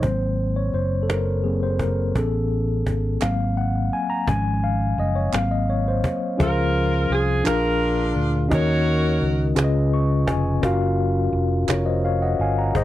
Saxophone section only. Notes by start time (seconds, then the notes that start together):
6.41 F4 A#4
7.11 G#4
7.46 D4 F4 A#4
8.52 F#4 A#4 C#5